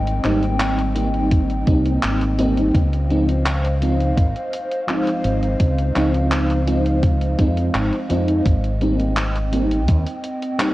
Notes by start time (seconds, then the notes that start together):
Already playing: G#1 G3 A#3 C4 D#4 D#5 G5
0.07 closed hi-hat
0.24 G#1 G3 A#3 C4 D#4, clap, closed hi-hat
0.43 closed hi-hat
0.60 clap, closed hi-hat
0.79 closed hi-hat
0.95 G3 A#3 C4 D#4, closed hi-hat
1.14 closed hi-hat
1.32 kick, closed hi-hat
1.50 closed hi-hat
1.66 C2 G3 A#3 C4 D#4, kick, closed hi-hat
1.85 closed hi-hat
2.03 G#1, clap, closed hi-hat
2.21 closed hi-hat
2.38 G3 A#3 C4 D#4, closed hi-hat
2.57 closed hi-hat
2.74 C#2 C5 D#5 F5, kick, closed hi-hat
2.93 closed hi-hat
3.10 F3 G#3 C4 D#4, closed hi-hat
3.29 closed hi-hat
3.46 clap, closed hi-hat
3.65 closed hi-hat
3.81 F3 G#3 C4 D#4, closed hi-hat
4.00 closed hi-hat
4.17 G#1, kick, closed hi-hat
4.36 closed hi-hat
4.53 closed hi-hat
4.71 closed hi-hat
4.87 F3 G#3 C4 D#4, clap, closed hi-hat
5.07 closed hi-hat
5.24 G#1, closed hi-hat
5.43 closed hi-hat
5.60 C#2, kick, closed hi-hat
5.79 closed hi-hat
5.95 C#2 F3 G#3 C4 D#4, clap, closed hi-hat
6.14 closed hi-hat
6.32 clap, closed hi-hat
6.50 closed hi-hat
6.67 F3 G#3 C4 D#4, closed hi-hat
6.86 closed hi-hat
7.03 kick, closed hi-hat
7.21 closed hi-hat
7.38 F2 F3 G#3 C4 D#4, kick, closed hi-hat
7.57 closed hi-hat
7.74 G#1, clap, closed hi-hat
7.93 closed hi-hat
8.09 F2 F3 G#3 C4 D#4, closed hi-hat
8.28 closed hi-hat
8.46 G#1 C4 G5, kick, closed hi-hat
8.64 closed hi-hat
8.81 G3 A#3 C4 D#4, closed hi-hat
9.00 closed hi-hat
9.17 clap, closed hi-hat
9.36 closed hi-hat
9.52 G3 A#3 C4 D#4, closed hi-hat
9.71 closed hi-hat
9.88 D#2, kick, closed hi-hat
10.07 closed hi-hat
10.24 closed hi-hat
10.43 closed hi-hat
10.59 G3 A#3 C4 D#4, clap, closed hi-hat